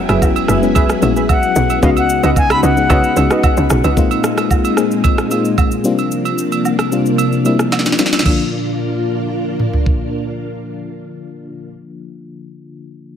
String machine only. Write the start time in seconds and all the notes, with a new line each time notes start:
Already playing: F#3 E4 G#4 B4
1.83 C#3 B3 D#4 F#4
3.97 A#2 G#3 C4 D#4
5.85 C3 F3 A#3 D4
8.26 A#2 A#3 D4 F4